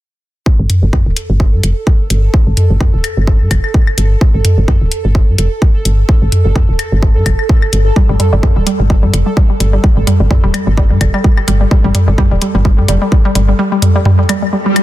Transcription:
0.46 A4, kick
0.59 G1
0.70 closed hi-hat, mid tom
0.83 G1
0.93 kick, mid tom
1.06 D1
1.17 closed hi-hat
1.30 G1
1.40 kick
1.53 G2
1.63 F1, closed hi-hat
1.87 kick
2.10 G1, closed hi-hat
2.34 kick
2.47 G1
2.57 closed hi-hat, mid tom
2.70 G1
2.80 kick, mid tom
2.94 D1
3.04 closed hi-hat, claves
3.17 G1
3.27 kick
3.41 G2
3.51 F1, kick, closed hi-hat, claves
3.64 claves
3.74 kick
3.87 claves
3.98 G1, closed hi-hat
4.21 kick
4.34 G1
4.45 closed hi-hat, mid tom
4.58 G1
4.68 kick, mid tom
4.81 D1
4.92 closed hi-hat
5.05 G1
5.15 kick
5.28 G2
5.38 F1, closed hi-hat
5.62 kick
5.85 G1, closed hi-hat
6.09 kick
6.22 G1
6.32 closed hi-hat, mid tom
6.45 G1
6.55 kick, mid tom
6.69 D1
6.79 closed hi-hat, claves
6.92 G1
7.03 kick
7.16 G2
7.26 F1, kick, closed hi-hat, claves
7.39 claves
7.49 kick
7.62 claves
7.73 G1, closed hi-hat
7.96 G3, kick
8.09 G1 G3
8.20 G3, closed hi-hat, mid tom
8.33 G1 G3
8.43 G3, kick, mid tom
8.56 D1 G3
8.67 G3, closed hi-hat
8.80 G1 G3
8.90 G3, kick
9.03 G2 G3
9.13 F1 G3, closed hi-hat
9.26 G3
9.37 G3, kick
9.50 G3
9.60 G1 G3, closed hi-hat
9.73 G3
9.84 G3, kick
9.97 G1 G3
10.07 G3, closed hi-hat, mid tom
10.20 G1 G3
10.31 G3, kick, mid tom
10.44 D1 G3
10.54 G3, closed hi-hat, claves
10.67 G1 G3
10.77 G3, kick
10.90 G2 G3
11.01 F1 G3, kick, closed hi-hat, claves
11.14 G3, claves
11.24 G3, kick
11.37 G3, claves
11.48 G1 G3, closed hi-hat
11.61 G3
11.71 G3, kick
11.84 G1 G3
11.95 G3, closed hi-hat, mid tom
12.08 G1 G3
12.18 G3, kick, mid tom
12.31 D1 G3
12.42 G3, closed hi-hat
12.55 G1 G3
12.65 G3, kick
12.78 G2 G3
12.88 F1 G3, closed hi-hat
13.02 G3
13.12 G3, kick
13.25 G3
13.35 G1 G3, closed hi-hat
13.49 G3
13.59 G3
13.72 G3
13.82 G3, closed hi-hat, mid tom
13.96 G3
14.05 G3, mid tom
14.19 G3
14.29 G3, closed hi-hat, claves
14.42 G3
14.53 G3, swell
14.66 G3
14.76 G3, closed hi-hat, claves

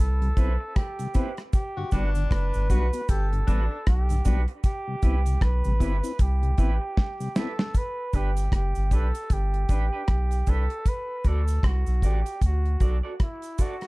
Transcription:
0.00 C2 A4
0.21 C3 G3, closed hi-hat
0.37 B1 B3 C4 E4 B4, kick, closed hi-hat, cabasa
0.60 muted clean electric guitar stroke
0.76 G4, kick, cross-stick, closed hi-hat
0.99 C3 G3, closed hi-hat, cabasa
1.14 B3 C4 E4 B4, kick, closed hi-hat, cabasa
1.37 muted clean electric guitar stroke, cross-stick, closed hi-hat
1.53 G4, kick, closed hi-hat, cabasa
1.77 G2 D3 F#4
1.91 G1 G3 B3 D4 F#4 B4, kick, closed hi-hat, cabasa
2.15 G2 D3, closed hi-hat, cabasa
2.31 F#1 B4, kick, cross-stick, closed hi-hat
2.54 G1 G2 D3, cabasa
2.70 B1 G3 B3 D4 F#4 B4, kick, closed hi-hat, cabasa
2.93 B3 F#4, closed hi-hat, cabasa
3.09 G1 G4 A4, kick, closed hi-hat, cabasa
3.33 G2 D3, closed hi-hat
3.47 A1 G3 B3 D4 F#4 B4, kick, closed hi-hat, cabasa
3.71 muted clean electric guitar stroke
3.87 B1 G4, kick, cross-stick, closed hi-hat
4.09 G2 D3, closed hi-hat, cabasa
4.25 B1 G3 B3 D4 F#4 B4, kick, closed hi-hat, cabasa
4.48 muted clean electric guitar stroke, closed hi-hat
4.64 G4, kick, closed hi-hat, cabasa
4.88 C3 G3
5.02 C2 B3 C4 E4 G4 B4, kick, closed hi-hat, cabasa
5.26 C3 G3, closed hi-hat, cabasa
5.41 B1 B4, kick, cross-stick, closed hi-hat
5.64 A1 C3 G3, cabasa
5.80 G1 B3 C4 E4 G4 B4, kick, closed hi-hat, cabasa
6.03 C4 E4, closed hi-hat, cabasa
6.19 C2 G4, kick, closed hi-hat, cabasa
6.43 C3 G3, closed hi-hat
6.58 A1 B3 C4 E4 G4 B4, kick, closed hi-hat, cabasa
6.81 muted clean electric guitar stroke
6.97 kick, snare
7.20 C3 G3, cabasa
7.36 B3 C4 E4 G4 A4 B4, snare, cabasa
7.59 muted clean electric guitar stroke, snare
7.75 B4, kick, closed hi-hat, cabasa
8.13 G1 D4 G4 B4, kick, closed hi-hat, cabasa
8.37 closed hi-hat, cabasa
8.52 F#1 G4, kick, cross-stick, closed hi-hat
8.75 G1, cabasa
8.91 B1 D4 G4 A4 B4, kick, closed hi-hat, cabasa
9.15 closed hi-hat, cabasa
9.30 G1 G4, kick, closed hi-hat, cabasa
9.54 closed hi-hat
9.69 A1 D4 G4 B4, kick, closed hi-hat, cabasa
9.93 D4 G4 B4
10.08 B1, kick, cross-stick, closed hi-hat
10.31 closed hi-hat, cabasa
10.47 C2 D4 G4 A4 B4, kick, closed hi-hat, cabasa
10.70 muted clean electric guitar stroke, closed hi-hat
10.86 B4, kick, closed hi-hat, cabasa
11.24 D2 F#4 A4 D5, kick, closed hi-hat, cabasa
11.48 closed hi-hat, cabasa
11.63 C2 F#4, kick, cross-stick, closed hi-hat
11.87 B1, cabasa
12.02 A1 F#4 G4 A4 D5, kick, closed hi-hat, cabasa
12.26 closed hi-hat, cabasa
12.42 D2 F#4, kick, closed hi-hat, cabasa
12.65 closed hi-hat
12.80 B1 F#4 A4 D5, kick, closed hi-hat, cabasa
13.03 F#4 A4 D5
13.20 E4, kick, cross-stick, closed hi-hat
13.42 closed hi-hat, cabasa
13.58 F#4 A4 D5, kick, closed hi-hat, cabasa
13.81 cross-stick, closed hi-hat

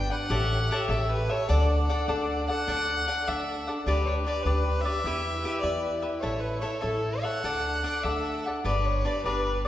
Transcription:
Already playing: G3 D4 B4 G5
0.10 B4 D5 F#5 G5
0.30 A1 A3 G4 A4 C#5 E5
0.71 G4 A4 C#5 E5
0.89 A1 G4 A4 C#5 E5
1.10 B4
1.29 A4 C#5 E5
1.48 D2 D4 A4 D5 F#5
1.89 D4 A4 D5 F#5
2.08 D2 D4 A4 D5 F#5
2.48 A4 D5 F#5
2.68 D2 D4 A4 D5 F#5
3.07 D4 A4 D5 F#5
3.27 D2 D4 A4 D5 E5 F#5
3.67 A4 D5 F#5
3.86 D2 D4 G4 B4 D5
4.06 C#5
4.25 D4 G4 B4 D5
4.42 D2 G4 B4 D5
4.46 D4 B4
4.81 D5 E5
4.86 G4 B4
5.03 E2 E4 G4 B4
5.07 E5
5.44 E4 G4 B4 E5
5.60 E2 E4 G4 B4 D5 E5
6.02 G4 B4 E5
6.20 A1 A3 E4 A4 C#5 E5
6.24 C#5
6.40 B4
6.60 E4 A4 C#5 E5
6.81 A1 E4 A4 C#5 E5
7.21 A4 C#5 E5 F#5
7.44 D2 D4 A4 D5 F#5
7.84 D4 A4 D5 F#5
8.03 D2 D4 A4 D5 E5 F#5
8.46 A4 D5 F#5
8.64 G1 G3 D4 G4 B4 D5
8.85 C#5
9.05 D4 G4 B4 D5
9.24 G1 D4 G4 B4 D5
9.65 D5

